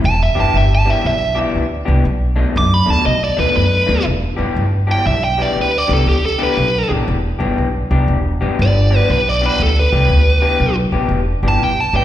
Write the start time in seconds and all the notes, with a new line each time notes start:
0.04 E1 A5
0.23 E5
0.35 G1 E3 B3 D4 G4
0.40 A5
0.54 G1 E5
0.75 A5
0.85 E3 B3 D4 G4
0.90 E5
1.05 B1 E5
1.35 E3 B3 D4 G4
1.55 D2
1.85 C2 E3 B3 D4 G4
2.05 B1
2.36 B2 D#3 A3 D4
2.56 F#2 D6
2.74 B5
2.86 D#2 B2 D#3 A3 D4
2.90 A5
3.06 B1 D#5
3.24 D5
3.37 D#2 B2 D#3 A3 D4 B4
3.56 F#2 B4
3.86 D#2 B2 D#3 A3 D4
4.06 E1
4.37 G1 E3 B3 D4 G4
4.56 G1
4.87 E3 B3 D4 G4
4.91 G5
5.06 B1 E5
5.24 G5
5.38 E3 B3 D4 G4 D5
5.56 D2
5.61 B4
5.78 D5
5.88 C2 E3 B3 D4 G4
5.93 A4
6.06 D2 G4
6.26 A4
6.38 E3 B3 D4 G4
6.43 B4
6.57 B1
6.89 A1 E3 B3 D4 G4
7.08 E1
7.39 G1 E3 B3 D4 G4
7.58 B1
7.91 C2 E3 B3 D4 G4
8.08 E1
8.41 G1 E3 B3 D4 G4
8.59 G1 D5
8.90 E3 B3 D4 G4
8.97 B4
9.10 B1 B4
9.29 D5
9.41 E3 B3 D4 G4
9.46 B4
9.60 D2 A4
9.79 B4
9.92 C2 E3 B3 D4 G4
10.09 D2
10.42 E3 B3 D4 G4
10.60 B1
10.92 A1 E3 B3 D4 G4
11.09 E1
11.43 G1 E3 B3 D4 G4
11.48 A5
11.60 B1 G5
11.80 A5
11.93 G#1 E3 B3 D4 G4 G5